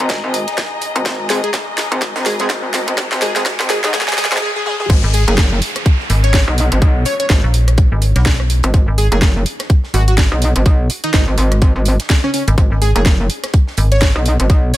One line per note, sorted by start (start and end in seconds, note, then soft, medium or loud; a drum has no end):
0.00 0.21 G#1 medium
0.00 4.42 G#4 medium
0.00 4.42 D#5 medium
0.00 4.42 A#5 medium
0.00 riser medium
0.09 kick loud
0.09 snare medium
0.09 closed hi-hat medium
0.24 0.45 G#1 loud
0.34 closed hi-hat medium
0.34 open hi-hat loud
0.48 snare soft
0.48 closed hi-hat medium
0.57 kick loud
0.57 snare loud
0.57 snare medium
0.57 closed hi-hat medium
0.81 closed hi-hat medium
0.81 open hi-hat medium
0.95 1.04 G#1 medium
0.95 closed hi-hat soft
0.95 closed hi-hat medium
1.06 1.41 G#1 medium
1.06 kick loud
1.06 snare medium
1.06 closed hi-hat medium
1.29 1.39 G#4 medium
1.29 snare medium
1.29 closed hi-hat medium
1.29 open hi-hat loud
1.44 1.50 G#4 medium
1.44 closed hi-hat soft
1.53 kick loud
1.53 snare medium
1.53 snare loud
1.53 closed hi-hat medium
1.78 snare loud
1.78 snare medium
1.78 closed hi-hat medium
1.78 open hi-hat loud
1.92 2.13 G#1 medium
1.92 closed hi-hat soft
2.01 kick loud
2.01 snare medium
2.01 closed hi-hat medium
2.16 2.48 G#1 loud
2.16 snare loud
2.16 closed hi-hat medium
2.26 2.35 G#4 medium
2.26 snare medium
2.26 open hi-hat loud
2.39 2.46 G#4 medium
2.39 closed hi-hat medium
2.39 closed hi-hat soft
2.49 2.85 G#1 loud
2.49 kick loud
2.49 snare loud
2.49 snare medium
2.49 closed hi-hat medium
2.74 snare medium
2.74 closed hi-hat medium
2.74 open hi-hat loud
2.88 3.09 G#1 medium
2.88 closed hi-hat medium
2.98 kick loud
2.98 snare medium
2.98 closed hi-hat medium
3.12 3.57 G#1 loud
3.12 snare medium
3.22 3.31 G#4 medium
3.22 snare loud
3.22 closed hi-hat medium
3.22 open hi-hat loud
3.36 3.42 G#4 medium
3.36 snare medium
3.36 closed hi-hat soft
3.46 kick loud
3.46 snare loud
3.46 closed hi-hat medium
3.60 3.81 G#1 loud
3.60 snare medium
3.70 3.79 G#4 medium
3.70 snare loud
3.70 closed hi-hat medium
3.70 open hi-hat loud
3.84 4.05 B1 loud
3.84 3.90 G#4 medium
3.84 snare medium
3.84 closed hi-hat soft
3.94 4.03 G#4 medium
3.94 kick loud
3.94 snare medium
3.94 snare loud
3.94 closed hi-hat medium
4.01 snare medium
4.01 closed hi-hat medium
4.08 4.14 G#4 medium
4.08 snare medium
4.08 closed hi-hat medium
4.12 snare medium
4.12 closed hi-hat medium
4.18 4.27 G#4 medium
4.18 snare loud
4.18 closed hi-hat medium
4.18 open hi-hat loud
4.25 snare medium
4.32 4.40 G#1 loud
4.32 4.38 G#4 medium
4.32 snare medium
4.32 snare soft
4.32 closed hi-hat medium
4.37 snare medium
4.42 4.51 G#4 medium
4.56 4.62 G#4 medium
4.66 4.75 G#4 medium
4.66 high tom medium
4.80 4.86 G#4 medium
4.80 mid tom medium
4.90 5.01 G#1 medium
4.90 kick loud
4.90 closed hi-hat medium
4.90 crash loud
4.90 downlifter medium
5.04 5.25 G#1 loud
5.13 5.23 G#4 medium
5.13 closed hi-hat medium
5.13 open hi-hat loud
5.28 5.60 F#1 loud
5.28 5.34 G#4 medium
5.28 closed hi-hat medium
5.38 kick loud
5.38 snare loud
5.38 closed hi-hat medium
5.62 closed hi-hat medium
5.62 open hi-hat loud
5.76 cross-stick medium
5.76 snare soft
5.76 closed hi-hat medium
5.86 kick loud
5.86 closed hi-hat medium
6.00 snare soft
6.10 6.46 G#1 loud
6.10 closed hi-hat medium
6.10 open hi-hat loud
6.24 6.39 C#5 medium
6.24 closed hi-hat soft
6.24 closed hi-hat medium
6.34 kick loud
6.34 snare loud
6.34 closed hi-hat medium
6.48 6.69 B1 loud
6.48 cross-stick medium
6.58 closed hi-hat medium
6.58 open hi-hat medium
6.72 6.80 G#1 loud
6.72 closed hi-hat medium
6.82 7.04 B1 loud
6.82 kick loud
6.82 closed hi-hat medium
7.05 7.15 C#5 medium
7.05 closed hi-hat medium
7.05 open hi-hat loud
7.20 7.26 C#5 medium
7.20 closed hi-hat medium
7.30 7.41 G#1 medium
7.30 kick loud
7.30 snare loud
7.30 closed hi-hat medium
7.44 7.90 A#1 loud
7.54 closed hi-hat medium
7.54 open hi-hat loud
7.68 cross-stick medium
7.68 closed hi-hat medium
7.78 kick loud
7.78 closed hi-hat medium
7.92 8.14 G#1 loud
8.02 closed hi-hat medium
8.02 open hi-hat loud
8.16 8.62 B1 loud
8.16 snare soft
8.16 closed hi-hat medium
8.26 kick loud
8.26 snare loud
8.26 closed hi-hat medium
8.40 cross-stick medium
8.50 closed hi-hat medium
8.50 open hi-hat loud
8.63 8.72 G#1 loud
8.63 closed hi-hat soft
8.63 closed hi-hat medium
8.74 8.85 G#1 loud
8.74 kick loud
8.74 closed hi-hat medium
8.88 9.10 G#1 loud
8.98 9.07 G#4 medium
8.98 closed hi-hat medium
8.98 open hi-hat loud
9.12 9.44 F#1 loud
9.12 9.18 G#4 medium
9.12 closed hi-hat medium
9.21 kick loud
9.21 snare loud
9.21 closed hi-hat medium
9.46 closed hi-hat medium
9.46 open hi-hat loud
9.59 cross-stick medium
9.59 snare soft
9.59 closed hi-hat medium
9.70 kick loud
9.70 closed hi-hat medium
9.84 snare soft
9.94 10.29 G#1 loud
9.94 10.03 F#4 medium
9.94 closed hi-hat medium
9.94 open hi-hat loud
10.08 10.14 F#4 medium
10.08 closed hi-hat medium
10.08 closed hi-hat soft
10.18 kick loud
10.18 snare loud
10.18 closed hi-hat medium
10.32 10.54 B1 loud
10.32 cross-stick medium
10.42 closed hi-hat medium
10.42 open hi-hat loud
10.56 10.64 G#1 loud
10.56 closed hi-hat medium
10.66 10.88 B1 loud
10.66 kick loud
10.66 closed hi-hat medium
10.66 closed hi-hat soft
10.90 closed hi-hat medium
10.90 open hi-hat loud
11.04 11.10 D#4 medium
11.04 closed hi-hat medium
11.13 11.25 G#1 medium
11.13 11.23 D#4 medium
11.13 kick loud
11.13 snare loud
11.13 closed hi-hat medium
11.13 closed hi-hat soft
11.28 11.36 G#1 loud
11.38 11.73 G#1 loud
11.38 closed hi-hat medium
11.38 open hi-hat medium
11.52 cross-stick medium
11.52 closed hi-hat medium
11.62 kick loud
11.62 closed hi-hat medium
11.76 11.97 G#1 loud
11.85 closed hi-hat medium
11.85 open hi-hat loud
12.00 snare soft
12.00 closed hi-hat medium
12.10 kick loud
12.10 snare loud
12.10 closed hi-hat medium
12.24 12.30 C#4 medium
12.24 cross-stick medium
12.34 12.43 C#4 medium
12.34 closed hi-hat medium
12.34 open hi-hat loud
12.47 12.56 G#1 loud
12.47 closed hi-hat soft
12.47 closed hi-hat medium
12.58 12.69 G#1 loud
12.58 kick loud
12.58 closed hi-hat medium
12.58 closed hi-hat soft
12.72 12.93 G#1 loud
12.82 12.91 G#4 medium
12.82 closed hi-hat medium
12.82 open hi-hat loud
12.96 13.28 F#1 loud
12.96 13.02 G#4 medium
12.96 closed hi-hat medium
13.06 kick loud
13.06 snare loud
13.06 closed hi-hat soft
13.06 closed hi-hat medium
13.30 closed hi-hat medium
13.30 open hi-hat medium
13.44 cross-stick medium
13.44 snare soft
13.44 closed hi-hat medium
13.54 kick loud
13.54 closed hi-hat medium
13.67 snare soft
13.77 14.13 G#1 loud
13.77 closed hi-hat medium
13.77 open hi-hat loud
13.92 14.07 C#5 loud
13.92 closed hi-hat soft
13.92 closed hi-hat medium
14.01 kick loud
14.01 snare loud
14.01 closed hi-hat medium
14.16 14.37 B1 loud
14.16 cross-stick medium
14.25 closed hi-hat medium
14.25 open hi-hat loud
14.40 14.48 G#1 loud
14.40 closed hi-hat medium
14.50 14.72 B1 loud
14.50 kick loud
14.50 closed hi-hat medium
14.50 closed hi-hat loud
14.74 14.77 C#5 medium
14.74 open hi-hat loud